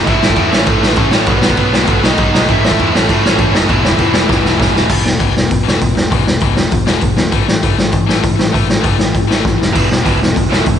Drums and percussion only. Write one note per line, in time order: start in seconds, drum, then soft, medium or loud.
0.07 kick loud
0.07 crash medium
0.22 snare loud
0.29 kick medium
0.36 kick loud
0.36 crash medium
0.53 snare loud
0.66 kick loud
0.66 crash medium
0.83 snare loud
0.96 kick loud
0.96 crash medium
1.11 snare loud
1.26 kick loud
1.26 crash medium
1.42 snare loud
1.50 kick medium
1.57 kick loud
1.57 crash medium
1.73 snare loud
1.87 kick loud
1.87 crash medium
2.03 snare loud
2.17 kick loud
2.17 crash medium
2.34 snare loud
2.48 kick loud
2.48 crash medium
2.64 snare loud
2.71 kick loud
2.79 kick loud
2.79 crash medium
2.95 snare loud
3.09 kick loud
3.09 crash medium
3.26 snare loud
3.39 kick loud
3.39 crash medium
3.55 snare loud
3.69 kick loud
3.69 crash medium
3.85 snare loud
3.91 kick medium
3.98 kick medium
3.98 crash medium
4.14 snare loud
4.29 kick loud
4.29 snare medium
4.45 snare medium
4.60 kick loud
4.60 snare medium
4.76 snare loud
4.89 kick loud
4.89 crash loud
5.06 snare loud
5.20 kick loud
5.20 open hi-hat medium
5.37 snare loud
5.51 kick loud
5.51 open hi-hat medium
5.68 snare loud
5.81 kick loud
5.81 open hi-hat medium
5.97 snare loud
6.12 kick loud
6.12 open hi-hat medium
6.27 snare loud
6.40 kick loud
6.40 open hi-hat medium
6.57 snare loud
6.71 kick loud
6.71 open hi-hat medium
6.87 snare loud
7.01 kick loud
7.01 open hi-hat medium
7.17 snare loud
7.32 kick loud
7.32 open hi-hat medium
7.48 snare loud
7.63 kick loud
7.63 open hi-hat medium
7.78 snare loud
7.92 kick loud
7.92 open hi-hat medium
8.09 snare loud
8.24 kick loud
8.24 open hi-hat medium
8.39 snare loud
8.54 kick loud
8.54 open hi-hat medium
8.70 snare loud
8.84 kick loud
8.84 open hi-hat medium
8.99 snare loud
9.15 kick loud
9.15 open hi-hat medium
9.30 snare loud
9.45 kick loud
9.45 snare medium
9.62 snare medium
9.75 kick loud
9.75 open hi-hat medium
9.75 crash medium
9.91 snare loud
10.06 kick loud
10.06 open hi-hat medium
10.23 snare loud
10.36 kick loud
10.36 open hi-hat medium
10.52 snare loud
10.66 kick loud
10.66 open hi-hat medium